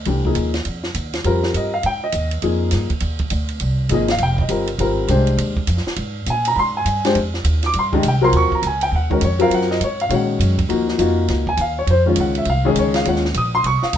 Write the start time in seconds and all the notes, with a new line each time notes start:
0.05 C2 E3 A3 D4 G4, ride
0.25 F3 A#3 D#4 G#4, kick
0.35 D#2, hi-hat pedal, ride
0.54 snare, ride
0.65 F2, ride
0.84 snare
0.95 D#2, hi-hat pedal, ride
1.13 snare, ride
1.24 F2 G3 C4 F4 A#4, ride
1.43 snare
1.54 G2 D#5, hi-hat pedal, ride
1.74 F5
1.83 G#2 G5, ride
2.04 D#5
2.12 D#2, hi-hat pedal, ride
2.31 ride
2.42 F2 F3 A#3 D#4 G#4, ride
2.71 G2, snare, hi-hat pedal, ride
2.90 muted upright bass stroke, kick, ride
3.00 D#2, ride
3.19 kick, ride
3.30 D2, hi-hat pedal, ride
3.49 ride
3.60 C2, ride
3.89 G#1 F3 A#3 D#4 G#4, hi-hat pedal, ride
3.94 D#5
4.08 F5, snare, ride
4.18 F1, ride
4.23 G5
4.38 D#5, kick
4.48 G1 G3 C4 F4 A#4, hi-hat pedal, ride
4.67 ride
4.78 G#1 G3 C4 F4 A#4, ride
5.08 C2 G#3 D4 G4 C5, hi-hat pedal, ride
5.27 ride
5.37 D#2, ride
5.57 kick
5.67 F2, hi-hat pedal, ride
5.77 snare
5.86 muted upright bass stroke, snare
5.96 G#2, ride
6.26 A#2 G#5, hi-hat pedal, ride
6.45 A#5, ride
6.55 G#2 B5
6.59 C6
6.77 G#5
6.85 G2, hi-hat pedal, ride
7.05 G#3 D4 G4 C5, snare, ride
7.15 F2, ride
7.34 snare
7.44 D#2, hi-hat pedal, ride
7.63 D6, snare, ride
7.74 G2, ride
7.79 C6
7.92 D#3 G#3 D4 G4 D#5, kick
8.03 C2, hi-hat pedal, ride
8.08 G5
8.21 F#3 C4 F4 A#4 C6
8.32 D#2, ride
8.37 C#6
8.52 A#5, muted upright bass stroke, kick
8.62 C#2, hi-hat pedal, ride
8.67 G#5
8.81 G5, ride
8.91 D#2
8.95 F#5
9.10 D#3 G#3 C#4 F#4 A#4, kick
9.21 F2 C#5, hi-hat pedal, ride
9.39 F#3 C4 F4 A#4 F5, ride
9.50 F#2, ride
9.54 F#5
9.62 snare
9.71 D#5, snare
9.80 G#2 C#5, hi-hat pedal, ride
10.00 F5, ride
10.09 A#2 D#3 G#3 C#4 F#4, ride
10.14 F#5
10.39 F#2, hi-hat pedal, ride
10.59 kick, ride
10.69 D#2 F3 A#3 D#4 F#4, ride
10.88 snare
10.98 F2 A#3 D#4 F4 F#4, hi-hat pedal, ride
11.28 C#2, snare, ride
11.47 G#5, kick
11.57 D#2, hi-hat pedal, ride
11.61 F5
11.79 C#5
11.87 F2 C5, ride
12.06 D#3 G#3 C#4 F4
12.16 C#2, hi-hat pedal, ride
12.20 F#5
12.35 E5, ride
12.45 C2, ride
12.50 F5
12.65 D#3 G#3 C#4 G#4
12.75 C#2, hi-hat pedal, ride
12.79 C#5
12.94 F5, snare, ride
13.05 D#2 D#3 G#3 C#4 F4 F#5, ride
13.16 snare
13.25 snare
13.34 A#1 D#6, hi-hat pedal, ride
13.55 C6
13.64 C2 C#6, ride
13.83 F5, muted upright bass stroke, snare
13.93 C#2, hi-hat pedal, ride